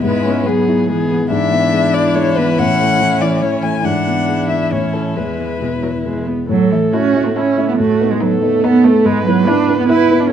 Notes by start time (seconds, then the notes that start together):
0.03 G#2 G#3 B3 E4 B4
0.25 B3 C#4
0.46 F#3 G#3 B3 G#4
0.68 E4
0.89 E3 G#3 B3 G#4
1.10 B3
1.31 G#2 E3 D4 E4 E5
1.51 B3
1.73 G#3
1.94 E4 D5
2.15 G#3 C#5
2.36 B3 B4
2.59 A2 C#4 F#5
2.80 A3
3.01 E3
3.22 E4 D5
3.42 E3 C#5
3.63 A3 G#5
3.84 G#2 E3 D4 E4 F#5
4.07 B3
4.28 G#3
4.50 E4 E5
4.72 A2 C#4 C#5
4.93 E4 A4 C#5
5.16 E2 G#3 B4
5.39 G#3
5.61 B2 G#3
5.82 F#3 E4
6.04 B2 G#3
6.27 G#3 B3
6.49 A2 F#3 A4
6.71 E3 A3 E4 E5
6.93 A3 C#4 E4 F#4 A4 E5
7.15 A3 E4 E5
7.26 A3
7.35 A3 C#4 E4 A4 E5
7.57 A3 E4 E5
7.68 B3
7.78 A2 A3 F#4
8.00 B3 D#4 B4
8.11 G#3
8.21 F#3 B3 D#4 A4 B4
8.42 A3 B3 D#4 B4
8.63 B3 D#4 B4
8.84 A3 B3 D#4 B4
9.05 G#2 G#3 B4
9.26 F#3 B3 E4 B4
9.47 B3 D4 E4 B4
9.69 B3 E4 B4
9.79 B3
9.89 B3 E4 B4
10.10 B3 E4 B4
10.20 D4